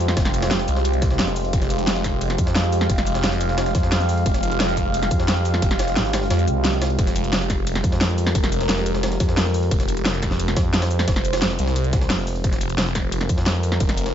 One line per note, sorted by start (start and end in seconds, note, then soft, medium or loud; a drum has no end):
0.00 0.15 F2 loud
0.00 14.14 G#3 medium
0.00 14.14 F4 medium
0.00 14.14 G4 medium
0.00 1.51 C5 loud
0.08 snare medium
0.08 ride medium
0.17 0.49 F1 loud
0.17 kick loud
0.17 snare loud
0.17 closed hi-hat medium
0.17 ride medium
0.25 snare medium
0.25 closed hi-hat soft
0.25 shaker soft
0.34 closed hi-hat medium
0.34 ride medium
0.34 shaker medium
0.42 snare loud
0.42 closed hi-hat soft
0.42 ride medium
0.51 0.67 F1 medium
0.51 snare loud
0.51 closed hi-hat medium
0.51 ride medium
0.59 snare medium
0.59 shaker soft
0.68 1.18 C2 loud
0.68 closed hi-hat medium
0.68 ride medium
0.68 shaker medium
0.76 snare medium
0.85 closed hi-hat medium
0.85 ride medium
0.93 closed hi-hat soft
1.02 kick loud
1.02 snare medium
1.02 closed hi-hat medium
1.02 ride medium
1.02 shaker medium
1.11 snare soft
1.19 1.52 F1 loud
1.19 snare loud
1.19 closed hi-hat medium
1.19 ride medium
1.28 snare soft
1.28 shaker soft
1.36 open hi-hat medium
1.36 shaker medium
1.45 ride soft
1.53 1.86 F1 loud
1.53 6.96 F5 loud
1.53 kick loud
1.53 closed hi-hat medium
1.53 ride medium
1.62 snare medium
1.62 closed hi-hat soft
1.62 shaker soft
1.70 closed hi-hat medium
1.70 ride medium
1.70 shaker medium
1.79 closed hi-hat soft
1.79 ride soft
1.87 2.37 F1 loud
1.87 snare loud
1.87 closed hi-hat medium
1.87 ride medium
1.96 snare soft
1.96 shaker soft
2.04 kick medium
2.04 snare soft
2.04 closed hi-hat medium
2.04 ride medium
2.04 shaker medium
2.21 closed hi-hat medium
2.21 ride medium
2.30 snare soft
2.30 closed hi-hat soft
2.30 ride soft
2.38 2.88 F2 loud
2.38 kick loud
2.38 closed hi-hat medium
2.38 ride medium
2.38 shaker medium
2.47 snare medium
2.55 snare loud
2.55 closed hi-hat medium
2.55 ride medium
2.64 shaker soft
2.72 open hi-hat medium
2.72 ride medium
2.72 shaker medium
2.81 snare medium
2.90 3.22 F1 loud
2.90 kick loud
2.90 closed hi-hat medium
2.90 ride medium
2.98 snare medium
2.98 closed hi-hat soft
2.98 shaker soft
3.07 closed hi-hat medium
3.07 ride medium
3.07 shaker medium
3.15 snare medium
3.15 closed hi-hat soft
3.24 3.73 F1 medium
3.24 snare loud
3.24 closed hi-hat medium
3.24 ride medium
3.32 snare medium
3.32 shaker soft
3.41 closed hi-hat medium
3.41 ride medium
3.41 shaker medium
3.49 snare medium
3.58 snare loud
3.58 closed hi-hat medium
3.58 ride medium
3.66 snare soft
3.66 closed hi-hat soft
3.75 4.25 F2 loud
3.75 kick loud
3.75 snare medium
3.75 closed hi-hat medium
3.75 ride medium
3.75 shaker medium
3.83 snare soft
3.92 snare loud
3.92 closed hi-hat medium
3.92 ride medium
4.00 snare soft
4.00 shaker soft
4.09 open hi-hat medium
4.09 shaker medium
4.17 ride soft
4.26 4.59 F1 loud
4.26 kick loud
4.26 closed hi-hat medium
4.26 ride medium
4.34 snare medium
4.34 closed hi-hat soft
4.34 shaker soft
4.43 closed hi-hat medium
4.43 ride medium
4.43 shaker medium
4.51 closed hi-hat soft
4.51 ride soft
4.60 5.10 F1 loud
4.60 snare loud
4.60 closed hi-hat medium
4.60 ride medium
4.68 snare soft
4.68 shaker soft
4.77 kick medium
4.77 closed hi-hat medium
4.77 ride medium
4.77 shaker medium
4.94 closed hi-hat loud
4.94 ride medium
5.03 snare soft
5.03 closed hi-hat soft
5.03 ride soft
5.11 5.61 F2 loud
5.11 kick loud
5.11 closed hi-hat medium
5.11 ride medium
5.11 shaker medium
5.20 snare medium
5.28 snare loud
5.28 closed hi-hat loud
5.28 ride medium
5.37 shaker soft
5.45 open hi-hat medium
5.45 ride medium
5.45 shaker medium
5.54 snare medium
5.62 5.95 F1 loud
5.62 kick loud
5.62 closed hi-hat loud
5.62 ride medium
5.71 snare medium
5.71 closed hi-hat soft
5.71 shaker soft
5.79 snare loud
5.79 closed hi-hat medium
5.79 ride medium
5.79 shaker medium
5.88 snare soft
5.88 closed hi-hat soft
5.96 6.29 G#1 loud
5.96 snare loud
5.96 closed hi-hat medium
5.96 ride medium
6.05 snare soft
6.05 shaker soft
6.13 snare loud
6.13 snare soft
6.13 closed hi-hat medium
6.13 ride medium
6.13 shaker medium
6.22 snare soft
6.30 6.46 F2 loud
6.30 snare loud
6.30 closed hi-hat medium
6.30 ride medium
6.39 closed hi-hat soft
6.48 6.97 C2 loud
6.48 closed hi-hat medium
6.48 shaker medium
6.65 snare loud
6.65 closed hi-hat loud
6.65 ride medium
6.73 snare soft
6.73 ride soft
6.73 shaker soft
6.82 snare loud
6.82 open hi-hat medium
6.82 ride medium
6.82 shaker medium
6.90 ride soft
6.99 7.31 F1 loud
6.99 9.70 A#4 medium
6.99 kick loud
6.99 closed hi-hat loud
6.99 ride medium
7.07 snare medium
7.07 closed hi-hat soft
7.07 shaker soft
7.16 closed hi-hat medium
7.16 ride medium
7.16 shaker medium
7.24 closed hi-hat soft
7.24 ride soft
7.33 7.82 F1 medium
7.33 snare loud
7.33 closed hi-hat medium
7.33 ride medium
7.41 snare soft
7.41 shaker soft
7.50 kick medium
7.50 snare soft
7.50 closed hi-hat medium
7.50 ride medium
7.50 shaker medium
7.67 closed hi-hat loud
7.67 ride medium
7.75 snare medium
7.75 closed hi-hat soft
7.75 ride soft
7.84 8.34 F2 medium
7.84 kick loud
7.84 closed hi-hat medium
7.84 ride medium
7.84 shaker medium
7.92 snare medium
8.01 snare loud
8.01 closed hi-hat loud
8.01 ride medium
8.09 shaker soft
8.18 open hi-hat medium
8.18 ride medium
8.18 shaker medium
8.27 snare medium
8.35 8.68 F1 loud
8.35 kick loud
8.35 closed hi-hat loud
8.35 ride medium
8.44 snare medium
8.44 closed hi-hat soft
8.44 shaker soft
8.52 closed hi-hat medium
8.52 ride medium
8.52 shaker medium
8.61 snare medium
8.61 closed hi-hat soft
8.69 9.19 F1 medium
8.69 snare loud
8.69 closed hi-hat loud
8.69 ride medium
8.78 snare medium
8.78 shaker soft
8.86 closed hi-hat medium
8.86 ride medium
8.86 shaker medium
8.95 snare medium
9.03 snare loud
9.03 closed hi-hat medium
9.03 ride medium
9.12 snare soft
9.12 closed hi-hat soft
9.20 9.70 F2 loud
9.20 kick loud
9.20 snare medium
9.20 closed hi-hat medium
9.20 ride medium
9.20 shaker medium
9.29 snare soft
9.37 snare loud
9.37 closed hi-hat medium
9.37 ride medium
9.46 snare soft
9.46 shaker soft
9.54 open hi-hat medium
9.54 shaker medium
9.63 ride soft
9.71 10.04 F1 loud
9.71 12.43 C5 loud
9.71 kick loud
9.71 closed hi-hat medium
9.71 ride medium
9.80 snare medium
9.80 closed hi-hat soft
9.80 shaker soft
9.88 closed hi-hat medium
9.88 ride medium
9.88 shaker medium
9.97 closed hi-hat soft
9.97 ride soft
10.05 10.55 F1 loud
10.05 snare loud
10.05 closed hi-hat medium
10.05 ride medium
10.14 snare soft
10.14 shaker soft
10.22 kick medium
10.22 snare soft
10.22 closed hi-hat medium
10.22 ride medium
10.22 shaker medium
10.31 snare soft
10.40 closed hi-hat medium
10.40 ride medium
10.48 snare soft
10.48 closed hi-hat soft
10.48 ride soft
10.57 11.06 F2 loud
10.57 kick loud
10.57 snare loud
10.57 closed hi-hat medium
10.57 ride medium
10.57 shaker medium
10.74 snare loud
10.74 closed hi-hat medium
10.74 ride medium
10.82 snare loud
10.82 ride medium
10.82 shaker soft
10.91 open hi-hat medium
10.91 shaker medium
10.99 snare medium
10.99 ride medium
11.08 11.40 F1 loud
11.08 kick loud
11.08 snare loud
11.08 closed hi-hat medium
11.08 ride medium
11.16 snare medium
11.16 closed hi-hat soft
11.16 shaker soft
11.25 closed hi-hat medium
11.25 ride medium
11.25 shaker medium
11.33 snare loud
11.33 closed hi-hat soft
11.33 ride medium
11.42 11.57 F1 medium
11.42 snare loud
11.42 closed hi-hat medium
11.42 ride medium
11.50 snare medium
11.50 shaker soft
11.59 12.09 C2 loud
11.59 closed hi-hat medium
11.59 ride medium
11.59 shaker medium
11.67 snare medium
11.76 closed hi-hat medium
11.76 ride medium
11.84 closed hi-hat soft
11.93 kick loud
11.93 snare medium
11.93 closed hi-hat medium
11.93 ride medium
11.93 shaker medium
12.01 snare soft
12.10 12.43 F1 loud
12.10 snare loud
12.10 closed hi-hat medium
12.10 ride medium
12.19 snare soft
12.19 shaker soft
12.27 open hi-hat medium
12.27 shaker medium
12.36 ride soft
12.44 12.77 F1 loud
12.44 14.14 A#4 medium
12.44 kick loud
12.44 closed hi-hat medium
12.44 ride medium
12.53 snare medium
12.53 closed hi-hat soft
12.53 shaker soft
12.61 closed hi-hat medium
12.61 ride medium
12.61 shaker medium
12.70 closed hi-hat soft
12.70 ride soft
12.78 13.28 F1 loud
12.78 snare loud
12.78 closed hi-hat medium
12.78 ride medium
12.87 snare soft
12.87 shaker soft
12.95 kick medium
12.95 snare soft
12.95 closed hi-hat medium
12.95 ride medium
12.95 shaker medium
13.12 closed hi-hat medium
13.12 ride medium
13.21 snare soft
13.21 closed hi-hat soft
13.21 ride soft
13.29 13.79 F2 loud
13.29 kick loud
13.29 closed hi-hat medium
13.29 ride medium
13.29 shaker medium
13.38 snare medium
13.46 snare loud
13.46 closed hi-hat medium
13.46 ride medium
13.55 shaker soft
13.63 open hi-hat medium
13.63 ride medium
13.63 shaker medium
13.72 snare medium
13.80 14.13 F1 loud
13.80 kick loud
13.80 closed hi-hat medium
13.80 ride medium
13.89 snare medium
13.89 closed hi-hat soft
13.89 shaker soft
13.97 closed hi-hat medium
13.97 ride medium
13.97 shaker medium
14.06 snare medium
14.06 closed hi-hat soft